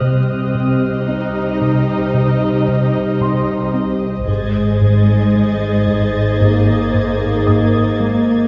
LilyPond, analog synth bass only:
\new Staff \with { instrumentName = "Analog synth bass" } { \clef bass \time 4/4 \key c \minor \tempo 4 = 56 c8 c8 c'8 c8 c8 c8 c8 c'8 | aes,8 aes,8 aes8 aes,8 aes,8 aes,8 aes,8 aes8 | }